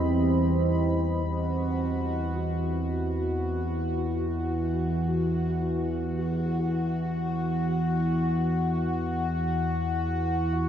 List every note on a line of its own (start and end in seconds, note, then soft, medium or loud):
0.00 1.24 E2 medium
0.00 1.23 E3 medium
0.00 1.25 C4 medium
0.00 1.26 G4 medium
0.00 1.26 C5 medium
0.00 1.25 D#5 medium
0.00 1.28 B5 medium
1.24 10.69 E2 medium
1.24 10.69 E3 medium
1.24 10.69 F#4 medium